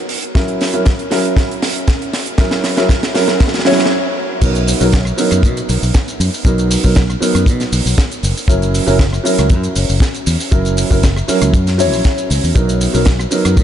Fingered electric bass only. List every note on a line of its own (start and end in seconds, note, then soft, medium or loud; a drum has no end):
4.42 4.73 B1 loud
4.81 5.11 B1 loud
5.32 5.45 F#2 medium
5.43 5.60 B2 medium
5.69 5.78 B1 medium
5.83 5.90 B1 medium
6.20 6.28 F#2 loud
6.45 6.76 B1 loud
6.84 7.14 B1 loud
7.21 muted fingered electric bass stroke soft
7.35 7.48 F#2 medium
7.46 7.63 B2 medium
7.72 7.81 B1 loud
7.86 7.93 B1 medium
8.23 8.32 F#1 loud
8.48 8.79 F#1 loud
8.88 9.18 F#1 loud
9.39 9.52 C#2 medium
9.50 9.66 F#2 medium
9.76 9.84 F#1 medium
9.90 9.97 F#1 medium
10.27 10.35 E2 loud
10.52 10.83 F#1 loud
10.91 11.21 F#1 loud
11.29 muted fingered electric bass stroke soft
11.42 11.54 C#2 medium
11.54 11.93 F#2 medium
11.93 12.00 A#1 medium
12.31 12.39 C#2 loud
12.44 12.51 E2 medium
12.56 12.86 B1 loud
12.95 13.25 B1 loud
13.45 13.59 F#2 medium
13.57 13.63 B2 loud